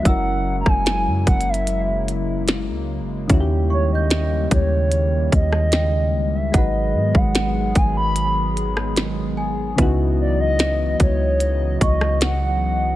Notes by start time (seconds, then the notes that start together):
Already playing: G#3
0.03 F#1 C#3 F#3 A#3 C#4 E4 E6, kick, closed hi-hat
0.07 E4 A#4 F#5
0.61 A#5
0.66 F#1 G#5, kick, cross-stick
0.86 snare, closed hi-hat
1.07 F#2
1.27 F#1 F#5, kick, closed hi-hat
1.41 closed hi-hat
1.49 E5
1.54 closed hi-hat
1.67 closed hi-hat
2.08 closed hi-hat
2.48 snare, closed hi-hat
2.69 C#2
3.00 F#1
3.28 D#2 D#3 G3 C#4, kick, closed hi-hat
3.32 E4 F#4
3.40 G4
3.70 C#5 C#6
3.93 D#5 G6
4.10 snare, closed hi-hat
4.51 D#2 C#5, kick, closed hi-hat
4.92 closed hi-hat
5.32 D#2 D#5, kick, closed hi-hat
5.52 cross-stick
5.72 G5, snare, closed hi-hat
6.13 C#2
6.35 E5
6.52 G#1 D#3 F#3 G#3 B3 D#4 G#4 D#5 F#5, kick, closed hi-hat
6.56 F#3 B4
6.94 G#2
7.15 G#1 F#5, kick
7.35 snare, closed hi-hat
7.75 G#1 G#5, kick, closed hi-hat
7.97 B5
8.16 closed hi-hat
8.57 closed hi-hat
8.77 cross-stick
8.96 snare, closed hi-hat
9.37 G#5
9.76 C#2 C#3 E3 F#3 B3 D#4 D#5, kick, closed hi-hat
9.81 E4 F#4
10.21 D5
10.41 D#5
10.59 snare, closed hi-hat
11.00 C#2 C#5, kick, closed hi-hat
11.40 closed hi-hat
11.81 C#2 D#5 C#6, kick, closed hi-hat
12.01 cross-stick
12.21 F#5, snare, closed hi-hat